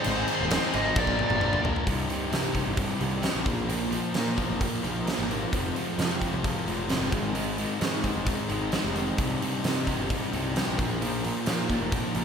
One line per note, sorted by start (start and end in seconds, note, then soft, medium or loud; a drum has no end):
0.00 0.50 G#2 medium
0.00 0.78 C5 medium
0.04 0.23 G#1 loud
0.04 0.50 D#3 medium
0.04 0.28 G#3 medium
0.04 0.28 C4 loud
0.04 0.26 D#4 loud
0.04 0.25 G#4 loud
0.04 crash medium
0.26 0.48 G#3 medium
0.26 0.49 C4 medium
0.26 0.50 D#4 medium
0.26 0.51 G#4 medium
0.26 crash medium
0.41 0.57 D#1 medium
0.49 0.74 G#3 medium
0.49 0.73 C4 medium
0.49 0.72 D#4 medium
0.49 0.71 G#4 medium
0.49 snare loud
0.49 crash medium
0.72 0.91 G#1 medium
0.72 0.95 G#3 medium
0.72 0.95 C4 medium
0.72 0.94 D#4 medium
0.72 0.94 G#4 medium
0.72 0.97 D#5 medium
0.72 crash medium
0.94 1.22 A#1 medium
0.94 1.63 A#2 medium
0.94 1.64 F3 medium
0.94 1.39 A#3 medium
0.94 1.40 D4 medium
0.94 1.41 F4 loud
0.94 1.42 A#4 loud
0.94 1.61 D5 medium
0.94 kick loud
1.07 kick medium
1.19 mid tom medium
1.30 1.56 G1 loud
1.30 mid tom medium
1.40 1.64 A#3 medium
1.40 1.63 D4 medium
1.40 1.62 F4 medium
1.40 1.61 A#4 medium
1.40 mid tom medium
1.53 mid tom medium
1.62 1.73 A#1 medium
1.62 1.86 A#3 medium
1.62 1.85 D4 medium
1.62 1.85 F4 medium
1.62 1.84 A#4 medium
1.62 floor tom loud
1.76 floor tom medium
1.86 2.32 C2 medium
1.86 2.04 C2 medium
1.86 2.30 G2 medium
1.86 2.09 C3 medium
1.86 2.08 G3 medium
1.86 2.08 D#4 medium
1.86 kick medium
1.86 open hi-hat medium
2.08 2.29 C2 medium
2.08 2.30 G2 medium
2.08 2.31 C3 soft
2.08 2.32 G3 medium
2.08 2.33 D#4 medium
2.08 open hi-hat soft
2.30 2.53 C2 medium
2.30 2.54 G2 medium
2.30 2.53 C3 medium
2.30 2.58 C3 medium
2.30 2.53 G3 medium
2.30 2.54 D#4 medium
2.30 snare medium
2.30 open hi-hat medium
2.54 3.01 C2 medium
2.54 2.76 G2 medium
2.54 2.77 C3 medium
2.54 2.78 G3 medium
2.54 2.78 D#4 medium
2.54 kick medium
2.54 open hi-hat soft
2.67 2.84 G1 medium
2.76 2.99 C2 medium
2.76 3.01 G2 medium
2.76 3.00 C3 medium
2.76 2.99 G3 medium
2.76 2.99 D#4 medium
2.76 kick loud
2.76 open hi-hat medium
3.00 3.27 C2 medium
3.00 3.46 C2 medium
3.00 3.21 G2 medium
3.00 3.23 C3 medium
3.00 3.23 G3 medium
3.00 3.24 D#4 medium
3.00 open hi-hat soft
3.22 3.45 C2 medium
3.22 3.45 G2 medium
3.22 3.45 C3 medium
3.22 3.45 G3 medium
3.22 3.45 D#4 medium
3.22 snare medium
3.22 open hi-hat medium
3.35 3.44 A#1 medium
3.44 3.98 A#1 medium
3.44 3.67 A#2 medium
3.44 3.68 F3 medium
3.44 3.67 A#3 medium
3.44 3.67 D#4 medium
3.44 3.69 F4 medium
3.44 3.69 A#4 medium
3.44 kick medium
3.44 open hi-hat soft
3.49 3.66 A#2 medium
3.67 4.14 A#2 medium
3.67 4.17 F3 medium
3.67 3.92 A#3 medium
3.67 3.91 D#4 medium
3.67 3.92 F4 medium
3.67 3.90 A#4 medium
3.67 open hi-hat medium
3.91 4.13 A#2 medium
3.91 4.14 F3 medium
3.91 4.12 A#3 soft
3.91 4.13 D#4 medium
3.91 4.14 F4 medium
3.91 4.14 A#4 medium
3.91 open hi-hat soft
4.13 4.36 A#2 medium
4.13 4.41 A#2 medium
4.13 4.37 F3 medium
4.13 4.36 A#3 medium
4.13 4.36 D#4 medium
4.13 4.36 F4 medium
4.13 4.35 A#4 medium
4.13 snare medium
4.13 open hi-hat medium
4.36 4.83 A#2 medium
4.36 4.82 F3 medium
4.36 4.58 A#3 medium
4.36 4.59 D#4 medium
4.36 4.59 F4 medium
4.36 4.61 A#4 medium
4.36 kick medium
4.36 open hi-hat soft
4.50 4.67 F1 medium
4.59 4.83 A#2 medium
4.59 4.83 F3 medium
4.59 4.82 A#3 medium
4.59 4.82 D#4 medium
4.59 4.82 F4 medium
4.59 4.81 A#4 medium
4.59 kick loud
4.59 open hi-hat medium
4.82 5.10 A#1 medium
4.82 5.30 A#2 medium
4.82 5.30 F3 medium
4.82 5.03 A#3 medium
4.82 5.04 D#4 medium
4.82 5.05 F4 medium
4.82 5.05 A#4 medium
4.82 open hi-hat soft
5.04 5.28 A#2 medium
5.04 5.30 F3 medium
5.04 5.28 A#3 medium
5.04 5.28 D#4 medium
5.04 5.28 F4 medium
5.04 5.27 A#4 medium
5.04 snare medium
5.04 open hi-hat medium
5.08 5.30 A#3 medium
5.19 5.44 G#1 medium
5.28 5.51 A#2 medium
5.28 5.52 F3 medium
5.28 5.51 A#3 soft
5.28 5.51 D#4 medium
5.28 5.51 F4 medium
5.28 5.50 A#4 medium
5.28 open hi-hat soft
5.51 5.70 F1 medium
5.51 5.98 F2 medium
5.51 5.98 C3 medium
5.51 5.74 F3 medium
5.51 5.73 G#3 medium
5.51 5.73 C4 medium
5.51 5.71 F4 medium
5.51 kick medium
5.51 open hi-hat medium
5.72 5.97 F2 medium
5.72 5.95 F3 soft
5.72 5.96 G#3 medium
5.72 5.97 C4 medium
5.72 5.97 F4 medium
5.72 open hi-hat soft
5.77 5.98 C3 medium
5.97 6.24 F2 medium
5.97 6.20 F2 medium
5.97 6.21 C3 medium
5.97 6.20 F3 medium
5.97 6.20 G#3 medium
5.97 6.20 C4 medium
5.97 6.18 F4 medium
5.97 snare medium
5.97 open hi-hat medium
6.19 6.67 F2 medium
6.19 6.66 C3 medium
6.19 6.42 F3 medium
6.19 6.43 G#3 medium
6.19 6.44 C4 medium
6.19 6.44 F4 medium
6.19 kick medium
6.19 open hi-hat soft
6.33 6.50 C2 medium
6.43 6.65 F2 medium
6.43 6.66 C3 medium
6.43 6.65 F3 medium
6.43 6.65 G#3 medium
6.43 6.65 C4 medium
6.43 6.64 F4 medium
6.43 kick medium
6.43 open hi-hat medium
6.65 6.93 F1 medium
6.65 7.12 F2 medium
6.65 7.12 C3 medium
6.65 6.87 F3 medium
6.65 6.89 G#3 medium
6.65 6.90 C4 medium
6.65 6.89 F4 medium
6.65 open hi-hat soft
6.88 7.11 F2 medium
6.88 7.11 C3 medium
6.88 7.11 F3 medium
6.88 7.11 G#3 medium
6.88 7.11 C4 medium
6.88 7.10 F4 medium
6.88 snare medium
6.88 open hi-hat medium
7.00 7.09 G1 medium
7.11 7.64 G#1 medium
7.11 7.33 G#2 medium
7.11 7.33 D#3 medium
7.11 7.34 G#3 medium
7.11 7.35 C4 medium
7.11 7.36 D#4 medium
7.11 7.35 G#4 medium
7.11 kick medium
7.11 open hi-hat soft
7.34 7.81 G#2 medium
7.34 7.81 D#3 medium
7.34 7.58 G#3 medium
7.34 7.58 C4 medium
7.34 7.58 D#4 medium
7.34 7.56 G#4 medium
7.34 open hi-hat medium
7.57 7.79 G#2 medium
7.57 7.79 D#3 medium
7.57 7.78 G#3 soft
7.57 7.79 C4 soft
7.57 7.80 D#4 medium
7.57 7.80 G#4 medium
7.57 open hi-hat soft
7.80 8.02 G#2 medium
7.80 8.08 G#2 medium
7.80 8.02 D#3 medium
7.80 8.02 G#3 medium
7.80 8.02 C4 medium
7.80 8.03 D#4 medium
7.80 8.01 G#4 medium
7.80 snare medium
7.80 open hi-hat medium
8.02 8.49 G#2 medium
8.02 8.49 D#3 medium
8.02 8.23 G#3 medium
8.02 8.24 C4 medium
8.02 8.25 D#4 medium
8.02 8.26 G#4 medium
8.02 kick medium
8.02 open hi-hat soft
8.15 8.33 D#1 medium
8.25 8.48 G#2 medium
8.25 8.49 D#3 medium
8.25 8.49 G#3 medium
8.25 8.48 C4 medium
8.25 8.49 D#4 medium
8.25 8.47 G#4 medium
8.25 kick medium
8.25 open hi-hat medium
8.48 8.76 G#1 medium
8.48 8.96 G#2 medium
8.48 8.96 D#3 medium
8.48 8.71 G#3 medium
8.48 8.72 C4 medium
8.48 8.73 D#4 medium
8.48 8.73 G#4 medium
8.48 open hi-hat soft
8.72 8.94 G#2 medium
8.72 8.94 D#3 medium
8.72 8.97 G#3 medium
8.72 8.95 C4 medium
8.72 8.96 D#4 medium
8.72 8.94 G#4 medium
8.72 snare loud
8.72 open hi-hat medium
8.84 9.10 F1 medium
8.95 9.17 G#2 medium
8.95 9.17 D#3 medium
8.95 9.18 G#3 medium
8.95 9.18 C4 medium
8.95 9.20 D#4 medium
8.95 9.17 G#4 medium
8.95 open hi-hat soft
9.18 9.64 C2 medium
9.18 9.36 C2 medium
9.18 9.63 G2 medium
9.18 9.41 C3 medium
9.18 9.40 G3 medium
9.18 9.40 D#4 medium
9.18 kick medium
9.18 open hi-hat medium
9.41 9.62 C2 medium
9.41 9.63 G2 medium
9.41 9.63 C3 soft
9.41 9.64 G3 medium
9.41 9.66 D#4 medium
9.41 open hi-hat soft
9.63 9.86 C2 medium
9.63 9.87 G2 medium
9.63 9.86 C3 medium
9.63 9.91 C3 medium
9.63 9.86 G3 medium
9.63 9.85 D#4 medium
9.63 snare medium
9.63 open hi-hat medium
9.86 10.32 C2 medium
9.86 10.07 G2 medium
9.86 10.08 C3 medium
9.86 10.09 G3 medium
9.86 10.10 D#4 medium
9.86 kick medium
9.86 open hi-hat soft
9.99 10.16 G1 medium
10.09 10.31 C2 medium
10.09 10.31 G2 medium
10.09 10.30 C3 medium
10.09 10.30 G3 medium
10.09 10.29 D#4 medium
10.09 kick medium
10.09 open hi-hat medium
10.30 10.77 C2 medium
10.30 10.59 C2 medium
10.30 10.52 G2 medium
10.30 10.53 C3 medium
10.30 10.54 G3 medium
10.30 10.55 D#4 medium
10.30 open hi-hat soft
10.54 10.77 C2 medium
10.54 10.76 G2 medium
10.54 10.77 C3 medium
10.54 10.77 G3 medium
10.54 10.76 D#4 medium
10.54 snare medium
10.54 open hi-hat medium
10.67 10.76 A#1 medium
10.77 11.30 A#1 medium
10.77 10.99 A#2 medium
10.77 11.00 F3 medium
10.77 11.00 A#3 medium
10.77 11.00 D#4 medium
10.77 11.02 F4 medium
10.77 11.01 A#4 medium
10.77 kick medium
10.77 open hi-hat soft
11.00 11.46 A#2 medium
11.00 11.49 F3 medium
11.00 11.24 A#3 medium
11.00 11.23 D#4 medium
11.00 11.23 F4 medium
11.00 11.22 A#4 medium
11.00 open hi-hat medium
11.23 11.46 A#2 medium
11.23 11.47 F3 medium
11.23 11.44 A#3 soft
11.23 11.45 D#4 medium
11.23 11.47 F4 medium
11.23 11.46 A#4 medium
11.23 open hi-hat soft
11.45 11.68 A#2 medium
11.45 11.73 A#2 medium
11.45 11.69 F3 medium
11.45 11.69 A#3 medium
11.45 11.68 D#4 medium
11.45 11.67 F4 medium
11.45 11.67 A#4 medium
11.45 snare loud
11.45 open hi-hat medium
11.69 12.14 A#2 medium
11.69 12.15 F3 medium
11.69 11.89 A#3 medium
11.69 11.90 D#4 medium
11.69 11.91 F4 medium
11.69 11.91 A#4 medium
11.69 kick medium
11.69 open hi-hat soft
11.81 11.98 F1 medium
11.90 12.14 A#2 medium
11.90 12.14 F3 medium
11.90 12.14 A#3 medium
11.90 12.14 D#4 medium
11.90 12.13 F4 medium
11.90 12.12 A#4 medium
11.90 kick medium
11.90 open hi-hat medium
12.13 12.25 A#1 medium
12.13 12.25 A#2 medium
12.13 12.25 F3 medium
12.13 12.25 A#3 medium
12.13 12.25 D#4 medium
12.13 12.25 F4 medium
12.13 12.25 A#4 medium
12.13 open hi-hat soft